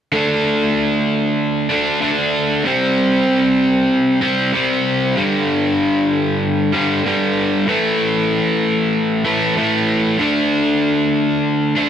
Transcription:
0.12 D3 A3 D4
1.69 D3 A3 D4
2.01 D3 A3 D4
2.65 C3 G3 C4
4.21 C3 G3 C4
4.53 C3 G3 C4
5.15 G2 D3 G3
6.73 G2 D3 G3
7.04 G2 D3 G3
7.67 A2 E3 A3
9.25 A2 E3 A3
9.56 A2 E3 A3
10.19 D3 A3 D4
11.75 D3 A3 D4

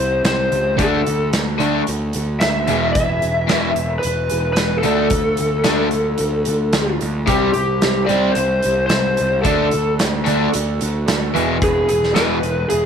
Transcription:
Already playing: C2 C4 C5
0.00 G3 E4
0.24 C2 G3 C4 E4 C5, snare, closed hi-hat
0.52 C#2 G3 C4 E4 C5, closed hi-hat
0.79 D2 D3 A3 D4 F#4 A4, kick, closed hi-hat
1.07 D2, closed hi-hat
1.33 D2 A3 D4 F#4 A4, snare, closed hi-hat
1.58 D3 A3 D4, closed hi-hat
1.87 D2, closed hi-hat
2.13 D2 F#4 A4, closed hi-hat
2.18 D4
2.40 D2 A3 D4 F#4 A4 E5, snare, closed hi-hat
2.68 E1 E2 B2 E3 G#4 B4, closed hi-hat
2.73 E4
2.93 E1 E5, kick, closed hi-hat
2.98 E3 B3 E4 G#4 B4
3.22 E1, closed hi-hat
3.47 E1 E2 B2 E3 B3 E4 G#4, snare, closed hi-hat
3.52 B4
3.76 closed hi-hat
3.99 B4, closed hi-hat
4.05 E1
4.29 E1 E4 G#4 B4, closed hi-hat
4.53 B3 B4, snare, closed hi-hat
4.57 E1 E4 G#4 B4
4.79 A4
4.83 D2 D3 A3 D4 A4, closed hi-hat
4.87 D4 F4
5.10 D2 D3 A3 D4 F4 A4, kick, closed hi-hat
5.37 D2, closed hi-hat
5.64 D2 D3 A3 D4 F4 A4, snare, closed hi-hat
5.91 closed hi-hat
6.18 D2, closed hi-hat
6.45 D2 D4 F4 A4, closed hi-hat
6.73 D2 A3 D4 F4 A4, snare, closed hi-hat
7.01 D2 D4 F4 A4, closed hi-hat
7.26 C2 C3 G3 C4 E4 G4 C5, kick, closed hi-hat
7.30 E3 G3 C4 E4 C5
7.53 C2 G4, closed hi-hat
7.82 C2 G3 C4 E4 G4 C5, snare, closed hi-hat
8.06 C3 G3 C4 D5, closed hi-hat
8.32 C5, closed hi-hat
8.36 C2 E4 G4 C5
8.63 C2 G3 C4 E4 C5, closed hi-hat
8.86 G3 C4 E4 G4 C5, snare, closed hi-hat
8.91 C2 E4 C5
9.17 C2 G3 C4 E4 C5, closed hi-hat
9.42 D2 D3 A3 D4 F#4 A4, kick, closed hi-hat
9.46 D4 F#4 A4
9.71 D2, closed hi-hat
9.97 D2 A3 D4 F#4 A4 C5, snare, closed hi-hat
10.24 D3 A3 D4, closed hi-hat
10.51 D2 D4 F#4 A4, closed hi-hat
10.79 D2 D4 F#4 A4, closed hi-hat
11.06 D2 A3 D4 F#4 A4, snare, closed hi-hat
11.11 A4
11.34 E1 E2 B2 E3 B3 E4 G#4 B4, closed hi-hat
11.62 E1 E3 B3 E4 G#4 B4, kick, closed hi-hat
11.89 E1 G#4, closed hi-hat
12.03 snare
12.13 E2 B2 E3 B3 E4 G#4 B4, snare, closed hi-hat
12.17 E1 E4 G#4 B4
12.43 closed hi-hat
12.69 E1 B3 E4 G#4, closed hi-hat

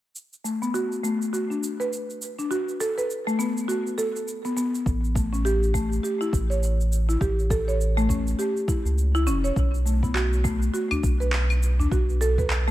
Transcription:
0.16 shaker
0.33 shaker
0.44 A3, shaker
0.62 B3, shaker
0.74 F#4, shaker
0.92 shaker
1.03 A3, shaker
1.22 shaker
1.33 F#4, shaker
1.50 D4, shaker
1.63 shaker
1.80 B4, shaker
1.93 shaker
2.10 shaker
2.22 shaker
2.39 D4, shaker
2.51 F#4, shaker
2.69 shaker
2.80 A4, shaker
2.98 B4, shaker
3.10 shaker
3.27 A3, shaker
3.39 B3, shaker
3.57 shaker
3.68 F#4, shaker
3.87 shaker
3.98 A4, shaker
4.16 shaker
4.28 shaker
4.45 B3, shaker
4.57 B3, shaker
4.75 shaker
4.86 A1, kick, shaker
5.04 shaker
5.15 A3, kick, shaker
5.33 C#4, shaker
5.45 G4, shaker
5.63 shaker
5.74 A3, kick, shaker
5.93 shaker
6.03 G4, shaker
6.21 E4, shaker
6.33 A1, kick, shaker
6.50 C#5, shaker
6.63 shaker
6.81 shaker
6.93 shaker
7.09 E4, shaker
7.21 A1 G4, kick, shaker
7.39 shaker
7.50 A4, kick, shaker
7.68 C#5, shaker
7.81 shaker
7.97 A3, shaker
8.09 C#4, kick, udu, shaker
8.27 shaker
8.39 G4, shaker
8.57 shaker
8.68 E4, kick, shaker
8.85 C#2, shaker
8.98 shaker
9.15 E4, shaker
9.27 E1 C#4, shaker
9.44 C#5, shaker
9.56 B1, kick, shaker
9.74 shaker
9.86 A3, shaker
10.03 B3, kick, shaker
10.15 F#4, clap, shaker
10.33 shaker
10.44 A3, kick, shaker
10.62 shaker
10.74 F#4, shaker
10.91 D4, udu, claves, shaker
11.03 B1, kick, shaker
11.20 B4, shaker
11.33 clap, shaker
11.50 claves, shaker
11.63 shaker
11.79 D4, udu, shaker
11.91 B1 F#4, kick, shaker
12.09 shaker
12.21 A4, shaker
12.38 B4, kick, udu, shaker
12.50 clap, shaker
12.68 A3

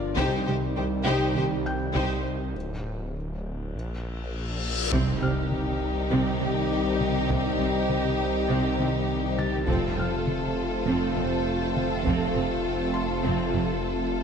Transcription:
Already playing: G1 F3 D4 F4 A#4 C5 D5 C6
0.17 C2 C3 D#3 G3 C4 D#4 G4 C5, taiko
0.46 C2 C3 G3 D#4 G4 C5
0.76 C2 C3 G3 D#4 G4 C5
1.05 C2 C3 D#4 G4 C5
1.35 C2 C3 D#3 D#4 G4 C5
1.66 G5 G6
1.95 C2 C3 D#4 G4 C5, taiko
2.55 D1, reverse cymbal
3.74 A#1
4.92 C2 C3 D#3 G3 C4 D#4 G4 C5 D#5, taiko, impact
5.22 C2 C3 G3 C4 F6
5.52 taiko mid
6.10 C2 C3 C4
6.40 C2 C3 D#3 C4
7.01 taiko mid
7.30 C2 C3 C4, taiko
7.60 C2 C3 G3 C4
7.89 taiko mid
8.48 C2 C3 C4
8.78 C2 C3 D#3 C4
9.38 A6, taiko mid
9.67 F1 F2 C3 F3 A3 C4 F4 A4 C5 F5, taiko
9.97 F1 F2 C4 F6
10.27 taiko mid
10.86 F1 F2 F3 C4
11.16 F1 F2 A3 C4
11.77 taiko mid
12.05 F1 F2 F3 C4, taiko
12.35 F1 F2 C4
12.94 C6
13.24 F1 F2 F3 C4
13.54 F1 F2 A3 C4

